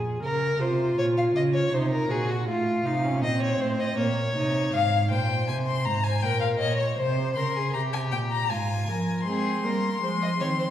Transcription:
0.00 0.22 A#2 medium
0.00 0.22 G#4 medium
0.23 0.59 C#3 medium
0.23 0.61 A#4 medium
0.23 0.62 A#4 medium
0.59 0.96 C3 medium
0.59 1.72 F4 medium
0.59 0.97 C5 medium
0.97 1.34 A#2 medium
0.97 1.05 C#5 medium
1.17 1.25 F5 medium
1.35 1.71 C#3 medium
1.35 1.43 D#5 medium
1.54 1.75 C#5 medium
1.72 2.08 C3 medium
1.72 2.09 D#4 medium
1.72 1.92 C5 medium
1.93 2.12 A#4 medium
2.09 2.48 A#2 medium
2.09 2.47 F#4 medium
2.09 2.31 G#4 medium
2.30 2.47 F#4 medium
2.47 2.84 A2 medium
2.47 2.87 F4 medium
2.85 3.23 C3 medium
2.85 3.06 D#4 medium
2.85 3.23 F5 medium
3.04 3.24 C#4 medium
3.21 3.59 A#2 medium
3.21 3.97 C4 medium
3.21 3.42 D#5 medium
3.42 3.62 C#5 medium
3.59 3.97 A2 medium
3.59 3.81 C5 medium
3.79 3.97 D#5 medium
3.97 4.34 A#2 medium
3.97 4.34 A#3 medium
3.97 4.75 C#5 medium
4.35 4.72 C3 medium
4.35 4.72 D#4 medium
4.73 5.12 G#2 medium
4.73 5.08 F5 medium
4.73 5.11 F5 medium
5.11 5.50 A#2 medium
5.11 6.25 C5 medium
5.11 5.48 G5 medium
5.48 5.88 C3 medium
5.48 5.56 G#5 medium
5.67 5.87 C6 medium
5.85 6.25 G#2 medium
5.85 6.05 A#5 medium
6.04 6.24 G#5 medium
6.22 6.60 A#2 medium
6.22 6.60 A#4 medium
6.22 6.40 G5 medium
6.41 6.48 F5 medium
6.59 6.98 A#2 medium
6.59 7.00 C#5 medium
6.59 6.78 D#5 medium
6.78 6.97 C#5 medium
6.97 7.36 C3 medium
6.97 7.35 C5 medium
6.97 7.38 C5 medium
7.35 7.76 C#3 medium
7.35 7.57 A#4 medium
7.35 7.73 C6 medium
7.56 7.76 G#4 medium
7.74 8.14 C3 medium
7.74 8.50 G4 medium
7.74 7.81 A#5 medium
7.93 8.01 G#5 medium
8.12 8.52 A#2 medium
8.12 8.19 G5 medium
8.31 8.52 A#5 medium
8.50 8.90 G#2 medium
8.50 8.90 F4 medium
8.50 9.25 G#5 medium
8.88 9.26 F3 medium
8.88 9.26 A#4 medium
9.26 9.62 G#3 medium
9.26 9.65 C4 medium
9.26 9.62 G#4 medium
9.26 10.70 C6 medium
9.64 10.02 G3 medium
9.64 10.01 A#3 medium
9.64 10.02 A#4 medium
10.01 10.41 F3 medium
10.01 10.39 G#3 medium
10.01 10.10 C5 medium
10.22 10.29 D#5 medium
10.40 10.70 D#3 medium
10.40 10.70 C4 medium
10.40 10.48 C#5 medium
10.59 10.67 C5 medium

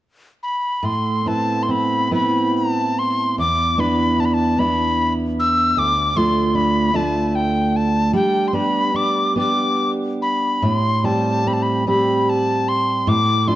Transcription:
0.43 0.87 B5 soft
0.83 3.37 A2 medium
0.83 1.29 C6 medium
1.26 2.11 B3 soft
1.26 1.67 C4 soft
1.26 2.12 E4 soft
1.26 1.64 A5 soft
1.63 1.73 C6 soft
1.69 2.11 C4 soft
1.69 2.13 B5 medium
2.11 3.78 B3 soft
2.11 3.46 C4 soft
2.11 3.78 E4 soft
2.11 2.58 B5 medium
2.56 3.00 A5 medium
2.99 3.39 C6 soft
3.38 5.76 E2 soft
3.38 3.82 D6 medium
3.78 4.57 B3 soft
3.78 4.18 D4 soft
3.78 4.59 E4 soft
3.78 4.22 B5 medium
4.19 4.59 D4 soft
4.19 4.27 A5 medium
4.25 4.35 B5 soft
4.34 4.61 A5 medium
4.58 5.85 B3 soft
4.58 6.16 D4 soft
4.58 5.86 E4 soft
4.58 5.13 B5 medium
5.40 5.80 E6 medium
5.77 8.14 D2 medium
5.77 6.18 D6 medium
6.16 6.92 A3 soft
6.16 6.54 D4 soft
6.16 6.94 F4 soft
6.16 6.57 C6 medium
6.55 6.94 D4 soft
6.55 6.97 B5 medium
6.94 8.22 A3 soft
6.94 8.54 D4 soft
6.94 8.22 F4 soft
6.94 7.28 A5 medium
7.28 7.37 A5 soft
7.35 7.78 G5 medium
7.76 8.15 A5 medium
8.13 10.65 G3 medium
8.13 8.49 G5 medium
8.48 8.56 C6 soft
8.53 9.35 B3 soft
8.53 8.93 D4 soft
8.53 9.37 G4 soft
8.53 8.97 B5 medium
8.94 9.35 D4 soft
8.94 9.38 D6 medium
9.36 10.71 B3 soft
9.36 10.71 D4 soft
9.36 11.04 G4 soft
9.36 9.91 D6 medium
10.22 10.65 B5 medium
10.62 13.06 A2 medium
10.62 11.06 C6 medium
11.04 11.86 G3 soft
11.04 11.45 C4 soft
11.04 11.87 G4 soft
11.04 11.49 A5 medium
11.46 11.86 C4 soft
11.46 11.55 B5 medium
11.53 11.64 A5 soft
11.63 11.88 B5 medium
11.87 13.15 G3 soft
11.87 13.16 C4 soft
11.87 13.16 G4 soft
11.87 12.31 B5 medium
12.30 12.70 A5 medium
12.68 13.10 C6 medium
13.07 13.55 A2 medium
13.07 13.49 D6 medium
13.47 13.55 A3 soft
13.47 13.55 D4 soft
13.47 13.55 F4 soft
13.47 13.55 C6 medium

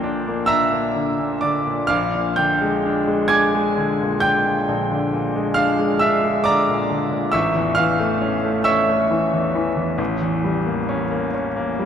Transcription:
0.00 1.87 A#1 medium
0.00 1.19 A#2 medium
0.00 0.96 D3 medium
0.00 0.17 A#3 medium
0.00 0.40 D4 medium
0.00 1.88 F5 medium
0.00 0.44 G5 medium
0.00 0.44 D6 medium
0.00 1.87 F6 loud
0.00 0.48 G6 loud
0.28 0.63 A#3 medium
0.46 0.86 D4 medium
0.46 1.38 E5 medium
0.46 1.38 A#5 medium
0.46 1.41 E6 loud
0.72 1.09 A#3 soft
0.96 1.33 D3 medium
1.19 1.57 A#2 soft
1.41 1.81 D3 soft
1.41 1.87 D5 medium
1.41 1.87 D6 medium
1.67 1.91 A#2 soft
1.87 4.64 A#1 medium
1.87 2.34 F5 medium
1.87 2.34 D6 medium
1.87 2.37 F6 loud
2.15 2.53 A#2 medium
2.36 2.76 D3 medium
2.36 3.27 G5 medium
2.36 3.30 G6 medium
2.62 2.99 G#3 medium
2.86 3.23 D4 medium
3.08 3.45 G#3 medium
3.28 3.68 D4 medium
3.28 4.18 G#5 medium
3.28 4.18 D6 medium
3.28 4.21 G#6 loud
3.55 3.91 G#3 medium
3.78 4.14 D3 medium
4.02 4.37 A#2 medium
4.20 4.59 D3 medium
4.20 5.52 G5 medium
4.20 5.55 G6 loud
4.46 4.82 A#2 medium
4.68 7.29 A#1 medium
4.91 5.26 D3 medium
5.13 5.48 A#2 medium
5.36 5.70 G#3 medium
5.54 5.93 D4 medium
5.54 5.98 F5 medium
5.54 6.00 F6 loud
5.79 6.15 G#3 medium
5.99 6.38 D4 medium
5.99 6.43 E5 medium
5.99 6.45 E6 loud
6.24 6.60 G#3 medium
6.44 6.82 D3 medium
6.44 7.28 D5 medium
6.44 7.28 A#5 medium
6.44 7.32 D6 loud
6.69 7.03 A#2 medium
6.90 7.24 D3 medium
7.11 7.33 A#2 medium
7.32 9.96 A1 medium
7.32 7.74 E5 medium
7.32 7.74 C#6 medium
7.32 7.76 E6 loud
7.55 7.91 E2 medium
7.75 8.13 E3 medium
7.75 8.62 F5 medium
7.75 8.65 F6 loud
7.99 8.35 A3 medium
8.21 8.57 C#4 medium
8.44 8.80 A3 medium
8.64 9.02 C#4 medium
8.64 11.29 E5 medium
8.64 11.29 C#6 medium
8.64 11.33 E6 loud
8.88 9.24 A3 medium
9.10 9.46 E3 medium
9.34 9.69 E2 medium
9.55 9.91 E3 medium
9.77 9.99 E2 medium
9.98 11.85 A1 medium
10.21 10.57 E2 medium
10.44 10.80 G3 medium
10.66 11.02 A#3 medium
10.89 11.25 C#4 medium
11.11 11.47 A#3 medium
11.34 11.70 C#4 medium
11.56 11.85 A#3 medium
11.79 11.85 G3 medium

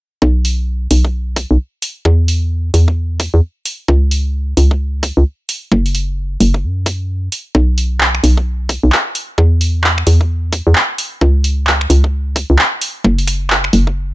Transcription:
0.22 0.87 B1 loud
0.22 kick loud
0.45 open hi-hat loud
0.91 1.46 B1 medium
0.91 open hi-hat loud
1.05 kick medium
1.36 kick loud
1.36 open hi-hat loud
1.51 1.57 B1 medium
1.82 open hi-hat loud
2.05 2.71 E2 loud
2.05 kick loud
2.28 open hi-hat loud
2.74 3.29 E2 medium
2.74 open hi-hat loud
2.88 kick medium
3.20 kick loud
3.20 open hi-hat medium
3.34 3.41 E2 medium
3.65 open hi-hat medium
3.88 4.54 C#2 loud
3.88 kick loud
4.11 open hi-hat medium
4.57 5.12 C#2 medium
4.57 open hi-hat loud
4.71 kick medium
5.03 kick loud
5.03 open hi-hat medium
5.17 5.24 C#2 loud
5.49 open hi-hat medium
5.72 6.37 F#1 loud
5.72 kick loud
5.86 open hi-hat medium
5.95 open hi-hat loud
6.40 6.65 F#1 medium
6.40 open hi-hat loud
6.54 kick medium
6.64 7.29 F#2 medium
6.86 kick loud
6.86 open hi-hat medium
7.32 open hi-hat medium
7.55 8.20 B1 loud
7.55 kick loud
7.78 open hi-hat medium
8.01 clap loud
8.15 finger snap medium
8.24 8.78 B1 medium
8.24 open hi-hat loud
8.37 kick medium
8.69 kick loud
8.69 open hi-hat medium
8.83 8.90 B1 medium
8.92 clap loud
9.15 open hi-hat medium
9.38 10.04 E2 loud
9.38 kick loud
9.61 open hi-hat medium
9.84 clap loud
9.98 finger snap medium
10.07 10.62 E2 medium
10.07 open hi-hat loud
10.21 kick medium
10.53 kick medium
10.53 open hi-hat loud
10.67 10.74 E2 loud
10.75 clap loud
10.98 open hi-hat loud
11.21 11.87 C#2 loud
11.21 kick loud
11.44 open hi-hat loud
11.67 clap loud
11.81 finger snap medium
11.90 12.45 C#2 medium
11.90 open hi-hat loud
12.04 kick medium
12.36 kick loud
12.36 open hi-hat loud
12.50 12.57 C#2 medium
12.59 clap loud
12.81 open hi-hat loud
13.04 13.70 F#1 loud
13.04 kick loud
13.19 open hi-hat medium
13.27 finger snap soft
13.27 open hi-hat loud
13.50 clap loud
13.64 finger snap medium
13.73 14.14 F#1 medium
13.73 open hi-hat loud
13.87 kick medium

